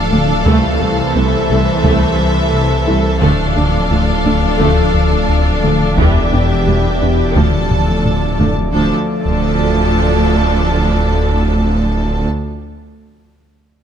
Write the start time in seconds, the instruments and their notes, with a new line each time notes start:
Already playing: detuned saw bass D1, analog synth pad F3 A3 A4 D5, viola section D4, violin section A4 F5
0.11 cello section D2, double bass section D2, analog synth bass D3, viola section A3, synth arpeggio sound A3
0.45 cello section C2, analog synth bass C2, detuned saw bass C2, double bass section C2, viola section E3 A3, analog synth pad E3 C5, synth arpeggio sound A3, taiko
0.81 cello section C2, analog synth bass C2, double bass section C2, viola section A3, synth arpeggio sound A4
1.15 cello section C2, analog synth bass C2, double bass section C2, viola section A3, synth arpeggio sound C4, violin section E5
1.50 cello section C2, analog synth bass C2, double bass section C2, viola section A3, synth arpeggio sound A4
1.84 cello section C2, analog synth bass C2, double bass section C2, synth arpeggio sound A3, viola section A3, taiko
2.18 analog synth bass C2
2.53 analog synth bass C2
2.87 cello section C2, double bass section C2, analog synth bass C3, viola section A3, synth arpeggio sound E4
3.21 detuned saw bass D1, analog synth bass D2, double bass section D2, cello section D2, synth arpeggio sound D3, analog synth pad F3 A3 A4 D5, viola section A3 D4, violin section A4 F5, taiko
3.56 analog synth bass D2, double bass section D2, cello section D2, viola section A3, synth arpeggio sound D4
3.91 analog synth bass D2, double bass section D2, cello section D2, synth arpeggio sound F3, viola section A3
4.25 analog synth bass D2, cello section D2, double bass section D2, viola section A3, synth arpeggio sound D4
4.59 analog synth bass D2, double bass section D2, cello section D2, synth arpeggio sound D3, viola section A3, taiko
4.94 analog synth bass D2
5.29 analog synth bass D2
5.63 cello section D2, double bass section D2, analog synth bass D3, synth arpeggio sound A3, viola section A3
5.97 double bass section E1, detuned saw bass E1, analog synth bass E2, cello section E2, analog synth pad E3 B3 G4, synth arpeggio sound E3, viola section E3, violin section G4 E5, taiko
6.32 double bass section E1, cello section E2, analog synth bass E2, viola section E3, synth arpeggio sound D4
6.67 double bass section E1, analog synth bass E2, cello section E2, viola section E3, synth arpeggio sound G3
7.01 double bass section E1, cello section E2, analog synth bass E2, viola section E3, synth arpeggio sound D4
7.35 detuned saw bass D1, cello section D2, analog synth bass D2, double bass section D2, synth arpeggio sound D3, analog synth pad F3 A3 A4, viola section F3, violin section A4 A5, taiko
7.70 analog synth bass D2, taiko low-mid
8.05 analog synth bass D2, taiko low-mid
8.39 cello section D2, double bass section D2, analog synth bass D3, viola section F3, synth arpeggio sound A3, taiko low
8.73 detuned saw bass D1, double bass section D2, cello section D2, viola section F3 D4, analog synth pad F3 A3 A4 D5, violin section A4 A5, taiko
9.25 detuned saw bass D1, cello section D2, double bass section D2, viola section F3 D4, violin section A4 A5, taiko